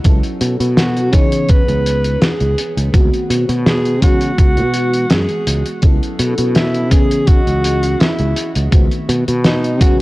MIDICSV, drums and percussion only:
0, 0, Header, 1, 2, 480
1, 0, Start_track
1, 0, Key_signature, 4, "minor"
1, 0, Tempo, 722892
1, 33, Time_signature, 4, 2, 24, 8
1, 6652, End_track
2, 0, Start_track
2, 0, Title_t, "Drums"
2, 29, Note_on_c, 9, 42, 60
2, 33, Note_on_c, 9, 36, 117
2, 95, Note_off_c, 9, 42, 0
2, 99, Note_off_c, 9, 36, 0
2, 155, Note_on_c, 9, 42, 46
2, 222, Note_off_c, 9, 42, 0
2, 271, Note_on_c, 9, 42, 94
2, 337, Note_off_c, 9, 42, 0
2, 401, Note_on_c, 9, 42, 63
2, 467, Note_off_c, 9, 42, 0
2, 512, Note_on_c, 9, 38, 108
2, 515, Note_on_c, 9, 42, 66
2, 578, Note_off_c, 9, 38, 0
2, 582, Note_off_c, 9, 42, 0
2, 642, Note_on_c, 9, 42, 47
2, 708, Note_off_c, 9, 42, 0
2, 749, Note_on_c, 9, 42, 85
2, 752, Note_on_c, 9, 36, 101
2, 815, Note_off_c, 9, 42, 0
2, 819, Note_off_c, 9, 36, 0
2, 877, Note_on_c, 9, 42, 61
2, 944, Note_off_c, 9, 42, 0
2, 987, Note_on_c, 9, 42, 69
2, 992, Note_on_c, 9, 36, 119
2, 1053, Note_off_c, 9, 42, 0
2, 1059, Note_off_c, 9, 36, 0
2, 1118, Note_on_c, 9, 42, 46
2, 1185, Note_off_c, 9, 42, 0
2, 1236, Note_on_c, 9, 42, 93
2, 1303, Note_off_c, 9, 42, 0
2, 1357, Note_on_c, 9, 42, 60
2, 1423, Note_off_c, 9, 42, 0
2, 1472, Note_on_c, 9, 42, 62
2, 1473, Note_on_c, 9, 38, 113
2, 1538, Note_off_c, 9, 42, 0
2, 1540, Note_off_c, 9, 38, 0
2, 1596, Note_on_c, 9, 42, 43
2, 1663, Note_off_c, 9, 42, 0
2, 1714, Note_on_c, 9, 42, 86
2, 1781, Note_off_c, 9, 42, 0
2, 1843, Note_on_c, 9, 42, 60
2, 1909, Note_off_c, 9, 42, 0
2, 1951, Note_on_c, 9, 36, 113
2, 1952, Note_on_c, 9, 42, 68
2, 2018, Note_off_c, 9, 36, 0
2, 2018, Note_off_c, 9, 42, 0
2, 2082, Note_on_c, 9, 42, 45
2, 2149, Note_off_c, 9, 42, 0
2, 2194, Note_on_c, 9, 42, 100
2, 2261, Note_off_c, 9, 42, 0
2, 2318, Note_on_c, 9, 42, 61
2, 2385, Note_off_c, 9, 42, 0
2, 2433, Note_on_c, 9, 38, 116
2, 2433, Note_on_c, 9, 42, 63
2, 2499, Note_off_c, 9, 38, 0
2, 2499, Note_off_c, 9, 42, 0
2, 2559, Note_on_c, 9, 42, 40
2, 2625, Note_off_c, 9, 42, 0
2, 2671, Note_on_c, 9, 36, 98
2, 2671, Note_on_c, 9, 42, 100
2, 2737, Note_off_c, 9, 36, 0
2, 2737, Note_off_c, 9, 42, 0
2, 2794, Note_on_c, 9, 42, 60
2, 2861, Note_off_c, 9, 42, 0
2, 2910, Note_on_c, 9, 42, 60
2, 2911, Note_on_c, 9, 36, 115
2, 2977, Note_off_c, 9, 36, 0
2, 2977, Note_off_c, 9, 42, 0
2, 3034, Note_on_c, 9, 42, 44
2, 3101, Note_off_c, 9, 42, 0
2, 3145, Note_on_c, 9, 42, 85
2, 3211, Note_off_c, 9, 42, 0
2, 3277, Note_on_c, 9, 42, 59
2, 3343, Note_off_c, 9, 42, 0
2, 3386, Note_on_c, 9, 42, 66
2, 3391, Note_on_c, 9, 38, 107
2, 3452, Note_off_c, 9, 42, 0
2, 3457, Note_off_c, 9, 38, 0
2, 3512, Note_on_c, 9, 42, 42
2, 3578, Note_off_c, 9, 42, 0
2, 3633, Note_on_c, 9, 42, 102
2, 3699, Note_off_c, 9, 42, 0
2, 3757, Note_on_c, 9, 42, 60
2, 3823, Note_off_c, 9, 42, 0
2, 3865, Note_on_c, 9, 42, 67
2, 3871, Note_on_c, 9, 36, 117
2, 3932, Note_off_c, 9, 42, 0
2, 3937, Note_off_c, 9, 36, 0
2, 4004, Note_on_c, 9, 42, 42
2, 4070, Note_off_c, 9, 42, 0
2, 4112, Note_on_c, 9, 42, 102
2, 4178, Note_off_c, 9, 42, 0
2, 4235, Note_on_c, 9, 42, 65
2, 4301, Note_off_c, 9, 42, 0
2, 4349, Note_on_c, 9, 42, 61
2, 4356, Note_on_c, 9, 38, 115
2, 4416, Note_off_c, 9, 42, 0
2, 4422, Note_off_c, 9, 38, 0
2, 4479, Note_on_c, 9, 42, 47
2, 4545, Note_off_c, 9, 42, 0
2, 4590, Note_on_c, 9, 42, 102
2, 4591, Note_on_c, 9, 36, 95
2, 4656, Note_off_c, 9, 42, 0
2, 4658, Note_off_c, 9, 36, 0
2, 4722, Note_on_c, 9, 42, 63
2, 4788, Note_off_c, 9, 42, 0
2, 4829, Note_on_c, 9, 42, 68
2, 4832, Note_on_c, 9, 36, 112
2, 4895, Note_off_c, 9, 42, 0
2, 4898, Note_off_c, 9, 36, 0
2, 4961, Note_on_c, 9, 42, 42
2, 5028, Note_off_c, 9, 42, 0
2, 5075, Note_on_c, 9, 42, 93
2, 5141, Note_off_c, 9, 42, 0
2, 5199, Note_on_c, 9, 42, 58
2, 5265, Note_off_c, 9, 42, 0
2, 5314, Note_on_c, 9, 42, 59
2, 5320, Note_on_c, 9, 38, 116
2, 5380, Note_off_c, 9, 42, 0
2, 5386, Note_off_c, 9, 38, 0
2, 5435, Note_on_c, 9, 42, 43
2, 5501, Note_off_c, 9, 42, 0
2, 5553, Note_on_c, 9, 42, 95
2, 5620, Note_off_c, 9, 42, 0
2, 5680, Note_on_c, 9, 42, 71
2, 5746, Note_off_c, 9, 42, 0
2, 5791, Note_on_c, 9, 42, 70
2, 5792, Note_on_c, 9, 36, 114
2, 5858, Note_off_c, 9, 42, 0
2, 5859, Note_off_c, 9, 36, 0
2, 5919, Note_on_c, 9, 42, 49
2, 5985, Note_off_c, 9, 42, 0
2, 6037, Note_on_c, 9, 42, 96
2, 6103, Note_off_c, 9, 42, 0
2, 6161, Note_on_c, 9, 42, 61
2, 6228, Note_off_c, 9, 42, 0
2, 6270, Note_on_c, 9, 42, 65
2, 6271, Note_on_c, 9, 38, 105
2, 6336, Note_off_c, 9, 42, 0
2, 6338, Note_off_c, 9, 38, 0
2, 6402, Note_on_c, 9, 42, 44
2, 6469, Note_off_c, 9, 42, 0
2, 6513, Note_on_c, 9, 36, 100
2, 6514, Note_on_c, 9, 42, 105
2, 6579, Note_off_c, 9, 36, 0
2, 6580, Note_off_c, 9, 42, 0
2, 6652, End_track
0, 0, End_of_file